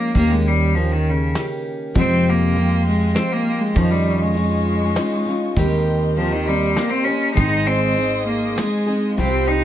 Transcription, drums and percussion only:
0.15 kick medium
0.15 closed hi-hat medium
0.76 closed hi-hat soft
1.35 snare medium
1.35 closed hi-hat soft
1.96 kick medium
1.96 closed hi-hat medium
2.55 closed hi-hat medium
3.16 snare medium
3.16 closed hi-hat soft
3.75 kick medium
3.75 closed hi-hat soft
4.36 closed hi-hat soft
4.96 snare medium
4.96 closed hi-hat soft
5.56 kick medium
5.56 closed hi-hat medium
6.17 closed hi-hat soft
6.77 snare medium
6.77 closed hi-hat medium
7.37 kick medium
7.37 closed hi-hat medium
7.97 closed hi-hat soft
8.58 snare medium
8.58 closed hi-hat soft

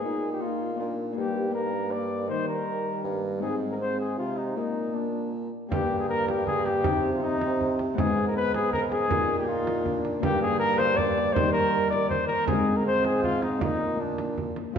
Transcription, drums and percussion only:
5.72 frame drum medium
6.28 frame drum medium
6.47 frame drum soft
6.66 frame drum soft
6.84 frame drum medium
7.41 frame drum medium
7.61 frame drum soft
7.79 frame drum soft
7.98 frame drum medium
8.54 frame drum medium
8.73 frame drum soft
8.92 frame drum soft
9.11 frame drum medium
9.67 frame drum medium
9.86 frame drum medium
10.05 frame drum soft
10.23 frame drum medium
10.80 frame drum medium
10.98 frame drum medium
11.17 frame drum soft
11.36 frame drum medium
11.93 frame drum medium
12.11 frame drum medium
12.29 frame drum soft
12.48 frame drum medium
13.04 frame drum medium
13.24 frame drum soft
13.42 frame drum soft
13.61 frame drum medium
14.18 frame drum medium
14.38 frame drum medium
14.56 frame drum soft

